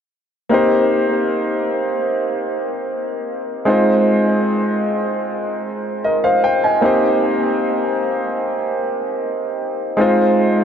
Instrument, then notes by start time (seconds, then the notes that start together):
grand piano
0.49 A#3 C4 D#4 G4
0.54 C5
3.65 G#3 C4 D#4 F4
3.70 C5
6.04 A#4 D#5
6.24 C5 F5
6.44 C5 G5
6.64 D#5 G#5
6.81 A#3 C4 D#4 G4
6.86 C5
9.97 G#3 C4 D#4 F4
10.02 C5